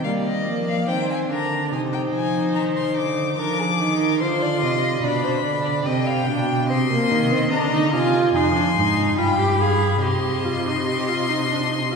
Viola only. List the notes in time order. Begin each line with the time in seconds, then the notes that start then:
0.05 A#3
0.46 A#3
0.89 C4
1.30 D4
1.72 D#4
3.38 D4
3.80 D#4
4.22 F4
5.04 D4
5.87 C4
6.28 D4
6.69 C4
6.90 A#3
7.31 C4
7.52 D4
7.73 D#4
7.94 F4
8.36 D#4
8.55 D4
8.77 D#4
9.18 F4
9.39 G4
9.61 G#4
10.03 G4
10.45 F4
10.66 D#4
10.87 G4
11.08 F4
11.29 D#4
11.50 D4
11.70 D#4
11.91 F4